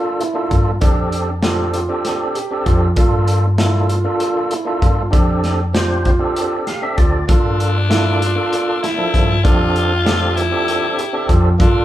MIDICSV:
0, 0, Header, 1, 6, 480
1, 0, Start_track
1, 0, Tempo, 616016
1, 637, Time_signature, 7, 3, 24, 8
1, 9232, End_track
2, 0, Start_track
2, 0, Title_t, "Grand piano"
2, 0, Program_c, 0, 0
2, 154, Note_on_c, 0, 64, 68
2, 336, Note_off_c, 0, 64, 0
2, 391, Note_on_c, 0, 65, 65
2, 574, Note_off_c, 0, 65, 0
2, 634, Note_on_c, 0, 62, 80
2, 996, Note_off_c, 0, 62, 0
2, 1111, Note_on_c, 0, 65, 76
2, 1294, Note_off_c, 0, 65, 0
2, 1356, Note_on_c, 0, 65, 67
2, 1718, Note_off_c, 0, 65, 0
2, 1829, Note_on_c, 0, 67, 70
2, 2012, Note_off_c, 0, 67, 0
2, 2069, Note_on_c, 0, 65, 72
2, 2253, Note_off_c, 0, 65, 0
2, 2310, Note_on_c, 0, 65, 77
2, 2674, Note_off_c, 0, 65, 0
2, 2790, Note_on_c, 0, 64, 74
2, 2973, Note_off_c, 0, 64, 0
2, 3029, Note_on_c, 0, 65, 73
2, 3393, Note_off_c, 0, 65, 0
2, 3518, Note_on_c, 0, 64, 64
2, 3698, Note_off_c, 0, 64, 0
2, 3761, Note_on_c, 0, 65, 63
2, 3940, Note_off_c, 0, 65, 0
2, 3995, Note_on_c, 0, 62, 81
2, 4358, Note_off_c, 0, 62, 0
2, 4480, Note_on_c, 0, 65, 80
2, 4660, Note_off_c, 0, 65, 0
2, 4718, Note_on_c, 0, 65, 73
2, 5080, Note_off_c, 0, 65, 0
2, 5201, Note_on_c, 0, 67, 61
2, 5381, Note_off_c, 0, 67, 0
2, 5440, Note_on_c, 0, 65, 63
2, 5620, Note_off_c, 0, 65, 0
2, 5676, Note_on_c, 0, 65, 78
2, 6039, Note_off_c, 0, 65, 0
2, 6154, Note_on_c, 0, 64, 80
2, 6337, Note_off_c, 0, 64, 0
2, 6392, Note_on_c, 0, 65, 75
2, 6756, Note_off_c, 0, 65, 0
2, 6877, Note_on_c, 0, 64, 66
2, 7058, Note_off_c, 0, 64, 0
2, 7121, Note_on_c, 0, 53, 72
2, 7301, Note_off_c, 0, 53, 0
2, 7361, Note_on_c, 0, 62, 79
2, 7722, Note_off_c, 0, 62, 0
2, 7842, Note_on_c, 0, 65, 74
2, 8022, Note_off_c, 0, 65, 0
2, 8087, Note_on_c, 0, 53, 79
2, 8446, Note_off_c, 0, 53, 0
2, 8560, Note_on_c, 0, 67, 61
2, 8740, Note_off_c, 0, 67, 0
2, 8799, Note_on_c, 0, 65, 72
2, 8980, Note_off_c, 0, 65, 0
2, 9045, Note_on_c, 0, 65, 87
2, 9232, Note_off_c, 0, 65, 0
2, 9232, End_track
3, 0, Start_track
3, 0, Title_t, "Tonewheel organ"
3, 0, Program_c, 1, 16
3, 0, Note_on_c, 1, 58, 85
3, 0, Note_on_c, 1, 62, 80
3, 0, Note_on_c, 1, 65, 79
3, 0, Note_on_c, 1, 69, 92
3, 180, Note_off_c, 1, 58, 0
3, 181, Note_off_c, 1, 62, 0
3, 183, Note_off_c, 1, 65, 0
3, 183, Note_off_c, 1, 69, 0
3, 261, Note_on_c, 1, 58, 78
3, 266, Note_on_c, 1, 62, 79
3, 272, Note_on_c, 1, 65, 73
3, 274, Note_on_c, 1, 69, 91
3, 556, Note_off_c, 1, 58, 0
3, 558, Note_off_c, 1, 62, 0
3, 561, Note_off_c, 1, 65, 0
3, 562, Note_off_c, 1, 69, 0
3, 627, Note_on_c, 1, 60, 83
3, 630, Note_on_c, 1, 62, 82
3, 632, Note_on_c, 1, 67, 73
3, 635, Note_on_c, 1, 69, 90
3, 1013, Note_off_c, 1, 60, 0
3, 1015, Note_off_c, 1, 62, 0
3, 1016, Note_off_c, 1, 67, 0
3, 1018, Note_off_c, 1, 69, 0
3, 1106, Note_on_c, 1, 60, 84
3, 1115, Note_on_c, 1, 62, 69
3, 1118, Note_on_c, 1, 67, 68
3, 1121, Note_on_c, 1, 69, 90
3, 1397, Note_off_c, 1, 60, 0
3, 1402, Note_off_c, 1, 62, 0
3, 1403, Note_off_c, 1, 67, 0
3, 1405, Note_off_c, 1, 69, 0
3, 1467, Note_on_c, 1, 60, 89
3, 1471, Note_on_c, 1, 62, 79
3, 1474, Note_on_c, 1, 67, 80
3, 1478, Note_on_c, 1, 69, 93
3, 1853, Note_off_c, 1, 60, 0
3, 1855, Note_off_c, 1, 62, 0
3, 1856, Note_off_c, 1, 67, 0
3, 1859, Note_off_c, 1, 69, 0
3, 1952, Note_on_c, 1, 60, 84
3, 1958, Note_on_c, 1, 62, 75
3, 1959, Note_on_c, 1, 67, 81
3, 1967, Note_on_c, 1, 69, 97
3, 2240, Note_off_c, 1, 60, 0
3, 2243, Note_off_c, 1, 62, 0
3, 2244, Note_off_c, 1, 67, 0
3, 2248, Note_off_c, 1, 69, 0
3, 2309, Note_on_c, 1, 58, 83
3, 2316, Note_on_c, 1, 62, 83
3, 2321, Note_on_c, 1, 69, 94
3, 2322, Note_on_c, 1, 65, 78
3, 2694, Note_off_c, 1, 58, 0
3, 2698, Note_off_c, 1, 62, 0
3, 2700, Note_off_c, 1, 65, 0
3, 2700, Note_off_c, 1, 69, 0
3, 2787, Note_on_c, 1, 58, 74
3, 2796, Note_on_c, 1, 62, 73
3, 2796, Note_on_c, 1, 65, 71
3, 2796, Note_on_c, 1, 69, 80
3, 3077, Note_off_c, 1, 58, 0
3, 3082, Note_off_c, 1, 62, 0
3, 3082, Note_off_c, 1, 65, 0
3, 3082, Note_off_c, 1, 69, 0
3, 3148, Note_on_c, 1, 58, 80
3, 3152, Note_on_c, 1, 62, 81
3, 3157, Note_on_c, 1, 65, 85
3, 3157, Note_on_c, 1, 69, 102
3, 3534, Note_off_c, 1, 58, 0
3, 3536, Note_off_c, 1, 62, 0
3, 3538, Note_off_c, 1, 65, 0
3, 3538, Note_off_c, 1, 69, 0
3, 3623, Note_on_c, 1, 58, 84
3, 3627, Note_on_c, 1, 62, 77
3, 3632, Note_on_c, 1, 65, 73
3, 3638, Note_on_c, 1, 69, 98
3, 3916, Note_off_c, 1, 58, 0
3, 3918, Note_off_c, 1, 62, 0
3, 3921, Note_off_c, 1, 65, 0
3, 3923, Note_off_c, 1, 69, 0
3, 3979, Note_on_c, 1, 60, 76
3, 3980, Note_on_c, 1, 62, 78
3, 3986, Note_on_c, 1, 67, 75
3, 3990, Note_on_c, 1, 69, 93
3, 4369, Note_off_c, 1, 60, 0
3, 4370, Note_off_c, 1, 62, 0
3, 4373, Note_off_c, 1, 67, 0
3, 4375, Note_off_c, 1, 69, 0
3, 4468, Note_on_c, 1, 60, 79
3, 4472, Note_on_c, 1, 62, 69
3, 4474, Note_on_c, 1, 67, 72
3, 4476, Note_on_c, 1, 72, 84
3, 4758, Note_off_c, 1, 60, 0
3, 4761, Note_off_c, 1, 62, 0
3, 4762, Note_off_c, 1, 67, 0
3, 4763, Note_off_c, 1, 72, 0
3, 4824, Note_on_c, 1, 62, 77
3, 4826, Note_on_c, 1, 60, 82
3, 4827, Note_on_c, 1, 67, 79
3, 4833, Note_on_c, 1, 69, 96
3, 5199, Note_on_c, 1, 77, 61
3, 5213, Note_off_c, 1, 60, 0
3, 5213, Note_off_c, 1, 62, 0
3, 5214, Note_off_c, 1, 67, 0
3, 5217, Note_off_c, 1, 69, 0
3, 5309, Note_off_c, 1, 77, 0
3, 5312, Note_on_c, 1, 62, 76
3, 5315, Note_on_c, 1, 60, 76
3, 5318, Note_on_c, 1, 76, 62
3, 5321, Note_on_c, 1, 67, 76
3, 5322, Note_on_c, 1, 69, 92
3, 5429, Note_off_c, 1, 76, 0
3, 5431, Note_on_c, 1, 74, 59
3, 5601, Note_off_c, 1, 62, 0
3, 5603, Note_off_c, 1, 60, 0
3, 5606, Note_off_c, 1, 67, 0
3, 5606, Note_off_c, 1, 69, 0
3, 5657, Note_off_c, 1, 74, 0
3, 5667, Note_on_c, 1, 58, 81
3, 5675, Note_on_c, 1, 62, 80
3, 5675, Note_on_c, 1, 65, 78
3, 5680, Note_on_c, 1, 69, 83
3, 6054, Note_off_c, 1, 58, 0
3, 6058, Note_off_c, 1, 65, 0
3, 6059, Note_off_c, 1, 62, 0
3, 6061, Note_off_c, 1, 69, 0
3, 6146, Note_on_c, 1, 58, 75
3, 6150, Note_on_c, 1, 62, 69
3, 6158, Note_on_c, 1, 65, 71
3, 6158, Note_on_c, 1, 69, 86
3, 6438, Note_off_c, 1, 58, 0
3, 6441, Note_off_c, 1, 62, 0
3, 6444, Note_off_c, 1, 65, 0
3, 6445, Note_off_c, 1, 69, 0
3, 6511, Note_on_c, 1, 58, 88
3, 6515, Note_on_c, 1, 62, 74
3, 6520, Note_on_c, 1, 65, 80
3, 6523, Note_on_c, 1, 69, 91
3, 6897, Note_off_c, 1, 58, 0
3, 6899, Note_off_c, 1, 62, 0
3, 6901, Note_off_c, 1, 65, 0
3, 6903, Note_off_c, 1, 69, 0
3, 6990, Note_on_c, 1, 58, 81
3, 6991, Note_on_c, 1, 62, 78
3, 6997, Note_on_c, 1, 53, 73
3, 7004, Note_on_c, 1, 69, 92
3, 7281, Note_off_c, 1, 58, 0
3, 7281, Note_off_c, 1, 62, 0
3, 7284, Note_off_c, 1, 53, 0
3, 7288, Note_off_c, 1, 69, 0
3, 7351, Note_on_c, 1, 60, 77
3, 7353, Note_on_c, 1, 62, 78
3, 7353, Note_on_c, 1, 67, 79
3, 7362, Note_on_c, 1, 69, 90
3, 7737, Note_off_c, 1, 60, 0
3, 7738, Note_off_c, 1, 62, 0
3, 7738, Note_off_c, 1, 67, 0
3, 7743, Note_off_c, 1, 69, 0
3, 7827, Note_on_c, 1, 60, 78
3, 7831, Note_on_c, 1, 62, 75
3, 7835, Note_on_c, 1, 67, 72
3, 7837, Note_on_c, 1, 69, 93
3, 8119, Note_off_c, 1, 60, 0
3, 8122, Note_off_c, 1, 62, 0
3, 8123, Note_off_c, 1, 67, 0
3, 8124, Note_off_c, 1, 69, 0
3, 8193, Note_on_c, 1, 60, 94
3, 8196, Note_on_c, 1, 62, 86
3, 8196, Note_on_c, 1, 67, 81
3, 8199, Note_on_c, 1, 69, 88
3, 8578, Note_off_c, 1, 60, 0
3, 8579, Note_off_c, 1, 62, 0
3, 8580, Note_off_c, 1, 67, 0
3, 8581, Note_off_c, 1, 69, 0
3, 8671, Note_on_c, 1, 60, 94
3, 8675, Note_on_c, 1, 62, 86
3, 8677, Note_on_c, 1, 67, 76
3, 8680, Note_on_c, 1, 69, 99
3, 8961, Note_off_c, 1, 60, 0
3, 8963, Note_off_c, 1, 62, 0
3, 8964, Note_off_c, 1, 67, 0
3, 8966, Note_off_c, 1, 69, 0
3, 9025, Note_on_c, 1, 58, 83
3, 9030, Note_on_c, 1, 62, 73
3, 9035, Note_on_c, 1, 65, 82
3, 9037, Note_on_c, 1, 69, 92
3, 9232, Note_off_c, 1, 58, 0
3, 9232, Note_off_c, 1, 62, 0
3, 9232, Note_off_c, 1, 65, 0
3, 9232, Note_off_c, 1, 69, 0
3, 9232, End_track
4, 0, Start_track
4, 0, Title_t, "Alto saxophone"
4, 0, Program_c, 2, 65
4, 5672, Note_on_c, 2, 62, 111
4, 6845, Note_off_c, 2, 62, 0
4, 6875, Note_on_c, 2, 64, 108
4, 7354, Note_on_c, 2, 65, 116
4, 7366, Note_off_c, 2, 64, 0
4, 8073, Note_on_c, 2, 64, 111
4, 8085, Note_off_c, 2, 65, 0
4, 8824, Note_off_c, 2, 64, 0
4, 9037, Note_on_c, 2, 62, 101
4, 9232, Note_off_c, 2, 62, 0
4, 9232, End_track
5, 0, Start_track
5, 0, Title_t, "Upright bass"
5, 0, Program_c, 3, 32
5, 401, Note_on_c, 3, 43, 74
5, 602, Note_off_c, 3, 43, 0
5, 638, Note_on_c, 3, 41, 77
5, 1449, Note_off_c, 3, 41, 0
5, 2075, Note_on_c, 3, 41, 77
5, 2278, Note_off_c, 3, 41, 0
5, 2315, Note_on_c, 3, 43, 84
5, 3128, Note_off_c, 3, 43, 0
5, 3756, Note_on_c, 3, 43, 83
5, 3959, Note_off_c, 3, 43, 0
5, 3997, Note_on_c, 3, 41, 80
5, 4809, Note_off_c, 3, 41, 0
5, 5438, Note_on_c, 3, 38, 77
5, 5641, Note_off_c, 3, 38, 0
5, 5680, Note_on_c, 3, 43, 81
5, 6492, Note_off_c, 3, 43, 0
5, 7122, Note_on_c, 3, 43, 79
5, 7324, Note_off_c, 3, 43, 0
5, 7362, Note_on_c, 3, 41, 81
5, 8173, Note_off_c, 3, 41, 0
5, 8798, Note_on_c, 3, 41, 80
5, 9001, Note_off_c, 3, 41, 0
5, 9038, Note_on_c, 3, 43, 85
5, 9232, Note_off_c, 3, 43, 0
5, 9232, End_track
6, 0, Start_track
6, 0, Title_t, "Drums"
6, 160, Note_on_c, 9, 42, 55
6, 238, Note_off_c, 9, 42, 0
6, 397, Note_on_c, 9, 42, 55
6, 399, Note_on_c, 9, 36, 70
6, 475, Note_off_c, 9, 42, 0
6, 477, Note_off_c, 9, 36, 0
6, 634, Note_on_c, 9, 42, 80
6, 637, Note_on_c, 9, 36, 102
6, 712, Note_off_c, 9, 42, 0
6, 715, Note_off_c, 9, 36, 0
6, 875, Note_on_c, 9, 42, 54
6, 953, Note_off_c, 9, 42, 0
6, 1111, Note_on_c, 9, 38, 96
6, 1111, Note_on_c, 9, 42, 70
6, 1189, Note_off_c, 9, 38, 0
6, 1189, Note_off_c, 9, 42, 0
6, 1352, Note_on_c, 9, 42, 57
6, 1430, Note_off_c, 9, 42, 0
6, 1595, Note_on_c, 9, 38, 29
6, 1595, Note_on_c, 9, 42, 73
6, 1673, Note_off_c, 9, 38, 0
6, 1673, Note_off_c, 9, 42, 0
6, 1834, Note_on_c, 9, 42, 62
6, 1912, Note_off_c, 9, 42, 0
6, 2075, Note_on_c, 9, 36, 69
6, 2075, Note_on_c, 9, 42, 63
6, 2153, Note_off_c, 9, 36, 0
6, 2153, Note_off_c, 9, 42, 0
6, 2309, Note_on_c, 9, 42, 81
6, 2314, Note_on_c, 9, 36, 105
6, 2387, Note_off_c, 9, 42, 0
6, 2392, Note_off_c, 9, 36, 0
6, 2551, Note_on_c, 9, 42, 58
6, 2629, Note_off_c, 9, 42, 0
6, 2792, Note_on_c, 9, 38, 98
6, 2792, Note_on_c, 9, 42, 77
6, 2870, Note_off_c, 9, 38, 0
6, 2870, Note_off_c, 9, 42, 0
6, 3034, Note_on_c, 9, 42, 59
6, 3112, Note_off_c, 9, 42, 0
6, 3273, Note_on_c, 9, 42, 73
6, 3351, Note_off_c, 9, 42, 0
6, 3513, Note_on_c, 9, 42, 58
6, 3591, Note_off_c, 9, 42, 0
6, 3758, Note_on_c, 9, 36, 67
6, 3758, Note_on_c, 9, 42, 54
6, 3835, Note_off_c, 9, 36, 0
6, 3835, Note_off_c, 9, 42, 0
6, 3998, Note_on_c, 9, 36, 103
6, 3998, Note_on_c, 9, 42, 75
6, 4076, Note_off_c, 9, 36, 0
6, 4076, Note_off_c, 9, 42, 0
6, 4236, Note_on_c, 9, 38, 32
6, 4236, Note_on_c, 9, 42, 48
6, 4314, Note_off_c, 9, 38, 0
6, 4314, Note_off_c, 9, 42, 0
6, 4477, Note_on_c, 9, 38, 97
6, 4477, Note_on_c, 9, 42, 72
6, 4555, Note_off_c, 9, 38, 0
6, 4555, Note_off_c, 9, 42, 0
6, 4716, Note_on_c, 9, 42, 56
6, 4719, Note_on_c, 9, 36, 72
6, 4794, Note_off_c, 9, 42, 0
6, 4797, Note_off_c, 9, 36, 0
6, 4959, Note_on_c, 9, 42, 67
6, 5037, Note_off_c, 9, 42, 0
6, 5197, Note_on_c, 9, 38, 29
6, 5197, Note_on_c, 9, 42, 52
6, 5275, Note_off_c, 9, 38, 0
6, 5275, Note_off_c, 9, 42, 0
6, 5437, Note_on_c, 9, 42, 57
6, 5439, Note_on_c, 9, 36, 69
6, 5514, Note_off_c, 9, 42, 0
6, 5517, Note_off_c, 9, 36, 0
6, 5677, Note_on_c, 9, 42, 83
6, 5680, Note_on_c, 9, 36, 105
6, 5755, Note_off_c, 9, 42, 0
6, 5758, Note_off_c, 9, 36, 0
6, 5923, Note_on_c, 9, 42, 59
6, 6001, Note_off_c, 9, 42, 0
6, 6162, Note_on_c, 9, 38, 94
6, 6162, Note_on_c, 9, 42, 74
6, 6239, Note_off_c, 9, 38, 0
6, 6239, Note_off_c, 9, 42, 0
6, 6405, Note_on_c, 9, 42, 65
6, 6483, Note_off_c, 9, 42, 0
6, 6644, Note_on_c, 9, 42, 74
6, 6722, Note_off_c, 9, 42, 0
6, 6886, Note_on_c, 9, 38, 32
6, 6886, Note_on_c, 9, 42, 58
6, 6964, Note_off_c, 9, 38, 0
6, 6964, Note_off_c, 9, 42, 0
6, 7123, Note_on_c, 9, 36, 64
6, 7127, Note_on_c, 9, 42, 61
6, 7201, Note_off_c, 9, 36, 0
6, 7205, Note_off_c, 9, 42, 0
6, 7362, Note_on_c, 9, 36, 111
6, 7363, Note_on_c, 9, 42, 76
6, 7440, Note_off_c, 9, 36, 0
6, 7441, Note_off_c, 9, 42, 0
6, 7603, Note_on_c, 9, 42, 55
6, 7681, Note_off_c, 9, 42, 0
6, 7843, Note_on_c, 9, 38, 99
6, 7843, Note_on_c, 9, 42, 75
6, 7920, Note_off_c, 9, 38, 0
6, 7920, Note_off_c, 9, 42, 0
6, 8081, Note_on_c, 9, 42, 56
6, 8159, Note_off_c, 9, 42, 0
6, 8323, Note_on_c, 9, 42, 74
6, 8401, Note_off_c, 9, 42, 0
6, 8561, Note_on_c, 9, 42, 57
6, 8639, Note_off_c, 9, 42, 0
6, 8799, Note_on_c, 9, 36, 67
6, 8799, Note_on_c, 9, 42, 56
6, 8877, Note_off_c, 9, 36, 0
6, 8877, Note_off_c, 9, 42, 0
6, 9038, Note_on_c, 9, 36, 109
6, 9038, Note_on_c, 9, 42, 77
6, 9116, Note_off_c, 9, 36, 0
6, 9116, Note_off_c, 9, 42, 0
6, 9232, End_track
0, 0, End_of_file